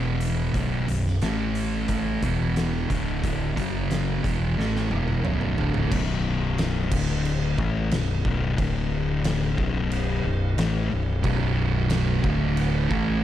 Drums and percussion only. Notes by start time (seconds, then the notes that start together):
0.21 closed hi-hat
0.54 kick, closed hi-hat
0.88 closed hi-hat
1.06 snare
1.21 snare, closed hi-hat
1.55 closed hi-hat
1.88 kick, closed hi-hat
2.22 kick, closed hi-hat
2.56 snare, closed hi-hat
2.90 kick, closed hi-hat
3.24 kick, closed hi-hat
3.57 kick, closed hi-hat
3.91 snare, closed hi-hat
4.24 kick, closed hi-hat
4.60 snare
4.76 snare
4.91 high tom
5.08 high tom
5.25 mid tom
5.41 mid tom
5.58 floor tom
5.74 floor tom
5.92 kick, crash
6.58 snare, crash
6.91 kick, crash
7.25 crash
7.58 kick
7.91 snare, crash
8.25 kick
8.58 kick, crash
9.24 snare, crash
9.58 kick
9.92 crash
10.58 snare, crash
11.24 kick, crash
11.90 snare, crash
12.24 kick
12.57 crash
12.91 kick